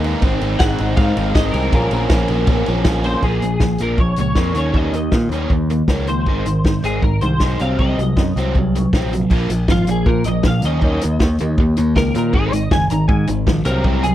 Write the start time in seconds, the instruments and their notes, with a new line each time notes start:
Already playing: picked electric bass D#2, clean electric guitar G#5
0.04 overdriven electric guitar D#3 G#3 A#3 D#4, ride
0.22 picked electric bass G#1, overdriven electric guitar G#2 D#3 G#3 C4 D#4, kick, ride
0.41 picked electric bass G#1, overdriven electric guitar G#2 D#3 G#3 C4 D#4, ride
0.59 picked electric bass G#1, overdriven electric guitar G#2 D#3 G#3 C4 D#4, clean electric guitar F#5, kick, snare, ride
0.78 picked electric bass G#1, overdriven electric guitar G#2 D#3 G#3 C4 D#4, ride
0.96 picked electric bass G#2, overdriven electric guitar G#2 D#3 G#3, clean electric guitar F5, kick, ride
1.01 overdriven electric guitar C4 D#4
1.17 picked electric bass G#1, overdriven electric guitar G#2 D#3 G#3 C4 D#4, ride
1.35 picked electric bass G#1, overdriven electric guitar G#2 D#3 G#3 C4 D#4, clean electric guitar D#5, kick, snare, ride
1.51 picked electric bass C2, overdriven electric guitar G#2, clean electric guitar A#4, snare, ride
1.55 overdriven electric guitar D#3 G#3 C4 D#4
1.72 picked electric bass A#1, overdriven electric guitar A#2 F3 A#3 C#4, kick, ride
1.91 picked electric bass A#1, overdriven electric guitar A#2 F3 A#3 C#4, ride
2.10 picked electric bass A#1, overdriven electric guitar A#2 F3, kick, snare, ride
2.14 overdriven electric guitar A#3 C#4
2.28 picked electric bass A#1, overdriven electric guitar A#2 F3 A#3 C#4, ride
2.47 picked electric bass A#1, overdriven electric guitar A#2 F3 A#3 C#4, kick, ride
2.66 picked electric bass A#1, overdriven electric guitar A#2 F3 A#3 C#4, ride
2.85 picked electric bass A#1, overdriven electric guitar A#2 F3 A#3, kick, snare, ride
2.89 overdriven electric guitar C#4
3.04 overdriven electric guitar A#2 F3 A#3 C#4, clean electric guitar C5, snare, ride
3.22 picked electric bass A#1, overdriven electric guitar A#2 F3 A#3, clean electric guitar G#4, kick, crash
3.42 picked electric bass A#1, overdriven electric guitar A#2 F3, closed hi-hat
3.60 picked electric bass A#1, overdriven electric guitar A#2 F3, kick, snare
3.78 picked electric bass A#1, overdriven electric guitar A#2 F3 A#3, closed hi-hat
3.82 clean electric guitar A#4
3.97 picked electric bass A#1, overdriven electric guitar A#2 F3, clean electric guitar C#5, kick
4.16 picked electric bass C#2, overdriven electric guitar A#2 F3, clean electric guitar C#5, closed hi-hat
4.35 picked electric bass F2, overdriven electric guitar A#2 F3 A#3, kick, snare
4.54 picked electric bass D#2, overdriven electric guitar D#3 A#3 C#4, clean electric guitar C#5, closed hi-hat
4.74 picked electric bass D#2, overdriven electric guitar D#3 A#3 C#4, clean electric guitar D#5, kick
4.92 picked electric bass D#2, overdriven electric guitar D#3 A#3, closed hi-hat
5.11 picked electric bass A#2, overdriven electric guitar D#3 A#3, kick, snare
5.29 picked electric bass D#2, overdriven electric guitar D#3 A#3 C#4, closed hi-hat
5.50 picked electric bass D#2, overdriven electric guitar D#3 A#3, kick
5.70 overdriven electric guitar D#3 A#3, closed hi-hat
5.88 picked electric bass C#2, overdriven electric guitar D#3 A#3 C#4, kick, snare
6.07 overdriven electric guitar D#3 A#3, clean electric guitar C5, closed hi-hat
6.26 picked electric bass G#1, overdriven electric guitar G#2 D#3 G#3, kick
6.46 picked electric bass G#1, overdriven electric guitar G#2 D#3, closed hi-hat
6.64 picked electric bass G#1, overdriven electric guitar G#2 D#3, kick, snare
6.83 picked electric bass G#1, overdriven electric guitar G#2 D#3 G#3, clean electric guitar G#4, closed hi-hat
7.02 picked electric bass G#1, overdriven electric guitar G#2 D#3, clean electric guitar A#4, kick
7.21 picked electric bass C2, overdriven electric guitar G#2 D#3, clean electric guitar C5, closed hi-hat
7.40 picked electric bass B1, overdriven electric guitar G#2 D#3 G#3, kick, snare
7.59 picked electric bass C2, overdriven electric guitar C3 F#3 C4, clean electric guitar F5, closed hi-hat
7.79 picked electric bass C2, overdriven electric guitar C3 F#3 C4, clean electric guitar D#5, kick
7.98 picked electric bass C2, overdriven electric guitar C3 F#3, closed hi-hat
8.16 picked electric bass F#2, overdriven electric guitar C3 F#3, kick, snare
8.36 picked electric bass C2, overdriven electric guitar C3 F#3 C4, closed hi-hat
8.54 picked electric bass C2, overdriven electric guitar C3 F#3, clean electric guitar C#5, kick
8.75 overdriven electric guitar C3 F#3, closed hi-hat
8.93 picked electric bass A#1, overdriven electric guitar C3 F#3 C4, kick, snare
9.13 overdriven electric guitar C3 F#3, closed hi-hat
9.30 picked electric bass A#1, overdriven electric guitar A#2 F3 A#3, kick, crash
9.49 picked electric bass A#1, overdriven electric guitar A#2 F3, closed hi-hat
9.68 picked electric bass G#1, overdriven electric guitar A#2 F3, clean electric guitar F4, kick, snare
9.87 picked electric bass A#1, overdriven electric guitar A#2 F3, clean electric guitar G#4, closed hi-hat
10.06 picked electric bass A#2, overdriven electric guitar A#2 F3, clean electric guitar A#4, kick
10.24 picked electric bass A#1, overdriven electric guitar A#2, clean electric guitar D#5, closed hi-hat
10.28 overdriven electric guitar F3
10.43 picked electric bass A#1, overdriven electric guitar A#2 F3, clean electric guitar F5, kick, snare
10.62 picked electric bass D#2, overdriven electric guitar D#3 A#3, clean electric guitar D#5, closed hi-hat
10.66 overdriven electric guitar C#4
10.81 picked electric bass D#2, overdriven electric guitar D#3 A#3 C#4, kick
11.01 picked electric bass D#2, overdriven electric guitar D#3 A#3, closed hi-hat
11.19 picked electric bass D#2, overdriven electric guitar D#3 A#3, kick, snare
11.38 picked electric bass D#2, overdriven electric guitar D#3 A#3, closed hi-hat
11.58 picked electric bass D#2, overdriven electric guitar D#3 A#3, kick
11.77 picked electric bass D#2, overdriven electric guitar D#3 A#3, closed hi-hat
11.95 picked electric bass C#2, overdriven electric guitar D#3 A#3, clean electric guitar A#4, kick, snare
12.15 picked electric bass A#2, overdriven electric guitar D#3 A#3, clean electric guitar A#4, closed hi-hat
12.33 picked electric bass G#1, overdriven electric guitar G#2 D#3 G#3, clean electric guitar G#4, kick
12.52 picked electric bass G#1, overdriven electric guitar G#2 D#3, clean electric guitar D#5, closed hi-hat
12.71 picked electric bass F#1, overdriven electric guitar G#2 D#3, clean electric guitar G#5, kick, snare
12.90 picked electric bass G#1, overdriven electric guitar G#2 D#3, clean electric guitar A#5, closed hi-hat
13.08 picked electric bass G#2, overdriven electric guitar G#2 D#3, clean electric guitar G#5, kick
13.27 picked electric bass G#1, overdriven electric guitar G#2 D#3, closed hi-hat
13.47 picked electric bass A#1, overdriven electric guitar G#2 D#3, kick, snare
13.65 picked electric bass C2, overdriven electric guitar C3 F#3 C4, clean electric guitar A#4, closed hi-hat
13.84 picked electric bass C2, overdriven electric guitar C3 F#3 C4, kick
14.03 picked electric bass C2, overdriven electric guitar C3 F#3, clean electric guitar G#4, closed hi-hat